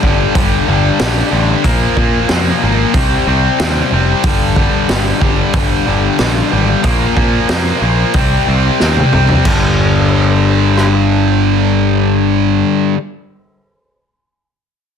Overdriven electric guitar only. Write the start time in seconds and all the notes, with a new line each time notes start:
0.02 G2 D3 G3
0.35 G2 D3 G3
0.68 G2 D3 G3
0.99 G2 D3 G3
1.32 G2 D3 G3
1.64 A#2 F3 A#3
1.97 A#2 F3 A#3
2.29 A#2 F3 A#3
2.62 A#2 F3 A#3
2.95 C3 G3 C4
3.28 C3 G3 C4
3.60 C3 G3 C4
3.93 C3 G3 C4
4.25 G2 D3 G3
4.58 G2 D3 G3
4.91 G2 D3 G3
5.21 G2 D3 G3
5.54 G2 D3 G3
5.87 G2 D3 G3
6.20 G2 D3 G3
6.52 G2 D3 G3
6.84 A#2 F3 A#3
7.16 A#2 F3 A#3
7.49 A#2 F3 A#3
7.82 A#2 F3 A#3
8.15 C3 G3 C4
8.47 C3 G3 C4
8.80 C3 G3 C4
9.13 C3 G3 C4
9.45 G2 D3 G3